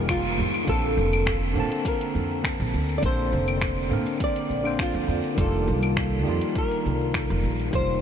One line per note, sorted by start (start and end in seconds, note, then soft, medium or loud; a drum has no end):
0.00 0.40 F1 loud
0.00 0.37 D#3 medium
0.00 0.66 D#3 medium
0.00 0.38 G3 medium
0.00 0.66 G3 medium
0.00 0.39 A#3 medium
0.00 0.66 A#3 medium
0.00 0.40 F4 medium
0.00 0.65 F4 medium
0.00 0.36 A#4 medium
0.09 0.70 F4 medium
0.09 finger snap medium
0.09 kick loud
0.09 closed hi-hat medium
0.09 claves medium
0.09 shaker soft
0.25 shaker soft
0.38 0.62 F2 medium
0.38 low conga medium
0.38 shaker medium
0.54 closed hi-hat soft
0.54 claves medium
0.54 shaker soft
0.64 0.99 A#1 medium
0.64 1.51 D3 medium
0.64 1.52 A#3 medium
0.64 kick loud
0.64 closed hi-hat medium
0.69 1.53 C4 medium
0.69 1.53 A4 loud
0.69 1.54 A4 loud
0.69 shaker soft
0.97 1.57 F1 medium
0.97 shaker medium
1.13 closed hi-hat soft
1.13 claves medium
1.13 shaker soft
1.26 finger snap loud
1.26 kick loud
1.26 closed hi-hat medium
1.26 shaker soft
1.43 shaker soft
1.53 1.68 A#2 medium
1.53 2.98 D3 medium
1.53 2.99 A#3 medium
1.53 shaker medium
1.57 3.00 C4 medium
1.57 3.02 A5 medium
1.72 closed hi-hat soft
1.72 shaker soft
1.85 2.94 A#4 medium
1.85 kick loud
1.85 closed hi-hat medium
1.85 shaker soft
2.01 closed hi-hat soft
2.01 shaker soft
2.15 2.55 F2 medium
2.15 shaker medium
2.31 shaker soft
2.44 finger snap loud
2.44 kick loud
2.44 closed hi-hat medium
2.44 shaker soft
2.60 2.71 A#1 loud
2.74 2.98 D2 medium
2.74 shaker medium
2.89 closed hi-hat soft
2.89 shaker soft
2.98 3.86 D3 medium
2.98 3.87 A#3 medium
2.98 3.04 D5 medium
3.02 3.34 A#1 loud
3.02 3.88 C4 medium
3.02 3.89 A4 medium
3.02 4.18 C5 loud
3.02 kick medium
3.02 closed hi-hat medium
3.02 shaker soft
3.33 3.92 F1 medium
3.33 shaker medium
3.48 closed hi-hat soft
3.48 claves medium
3.48 shaker soft
3.61 finger snap loud
3.61 kick loud
3.61 closed hi-hat medium
3.61 shaker soft
3.77 shaker soft
3.90 4.04 A#2 loud
3.90 4.14 D3 medium
3.90 4.15 A#3 medium
3.90 4.15 C4 medium
3.90 4.16 A#4 medium
3.90 shaker medium
4.07 closed hi-hat soft
4.07 shaker soft
4.20 4.77 D5 loud
4.20 kick loud
4.20 closed hi-hat medium
4.20 shaker soft
4.36 closed hi-hat soft
4.36 shaker soft
4.50 4.90 A#1 medium
4.50 shaker medium
4.63 4.78 D3 medium
4.63 4.79 A#3 medium
4.63 4.80 C4 medium
4.63 4.80 C5 medium
4.63 claves medium
4.63 shaker soft
4.79 5.41 F4 medium
4.79 finger snap loud
4.79 kick loud
4.79 closed hi-hat medium
4.79 shaker soft
4.94 5.06 F2 loud
5.08 5.21 F2 medium
5.08 shaker medium
5.24 closed hi-hat soft
5.24 shaker soft
5.35 5.69 F1 loud
5.35 6.21 D#3 medium
5.35 6.22 G3 medium
5.35 kick loud
5.35 closed hi-hat medium
5.35 shaker soft
5.39 6.24 A#3 medium
5.39 6.25 F4 loud
5.39 6.24 A4 medium
5.68 6.27 C2 loud
5.68 shaker medium
5.83 closed hi-hat soft
5.83 claves medium
5.83 shaker soft
5.97 finger snap medium
5.97 kick loud
5.97 closed hi-hat medium
5.97 shaker soft
6.13 shaker soft
6.23 6.39 F2 loud
6.23 7.68 D#3 medium
6.23 7.70 G3 medium
6.23 shaker medium
6.27 7.71 A#3 medium
6.27 7.72 F4 medium
6.41 closed hi-hat soft
6.41 shaker soft
6.55 7.71 A#4 loud
6.55 kick loud
6.55 closed hi-hat medium
6.55 shaker medium
6.71 closed hi-hat soft
6.71 shaker soft
6.86 7.25 C2 medium
6.86 shaker medium
7.01 shaker soft
7.14 finger snap loud
7.14 kick loud
7.14 closed hi-hat medium
7.14 shaker soft
7.30 7.41 F1 loud
7.44 7.68 A#1 medium
7.44 shaker medium
7.60 closed hi-hat soft
7.60 shaker soft
7.71 8.01 F1 loud
7.71 8.01 D#3 medium
7.71 8.01 G3 medium
7.71 kick loud
7.71 closed hi-hat medium
7.71 shaker soft
7.75 8.01 A#3 medium
7.75 8.01 F4 medium
7.75 8.01 C5 loud